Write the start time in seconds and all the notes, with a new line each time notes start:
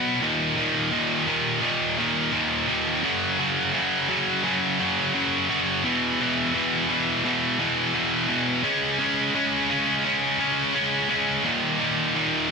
Already playing: B2 F#3 B3
0.21 D#2 A#2 D#3
0.56 D#2 A#2 D#3
0.91 D#2 A#2 D#3
1.27 D#2 A#2 D#3
1.61 D#2 A#2 D#3
1.98 D#2 A#2 D#3
2.33 D#2 A#2 D#3
2.68 D#2 A#2 D#3
3.03 F#2 C#3 F#3
3.39 F#2 C#3 F#3
3.73 F#2 C#3 F#3
4.09 F#2 C#3 F#3
4.43 F#2 C#3 F#3
4.79 F#2 C#3 F#3
5.15 F#2 C#3 F#3
5.49 F#2 C#3 F#3
5.84 E2 B2 E3
6.20 E2 B2 E3
6.54 E2 B2 E3
6.89 E2 B2 E3
7.24 E2 B2 E3
7.58 E2 B2 E3
7.94 E2 B2 E3
8.28 E2 B2 E3
8.63 C#3 G#3 C#4
8.99 C#3 G#3 C#4
9.35 C#3 G#3 C#4
9.70 C#3 G#3 C#4
10.05 C#3 G#3 C#4
10.39 C#3 G#3 C#4
10.74 C#3 G#3 C#4
11.09 C#3 G#3 C#4
11.43 D#2 A#2 D#3
11.79 D#2 A#2 D#3
12.14 D#2 A#2 D#3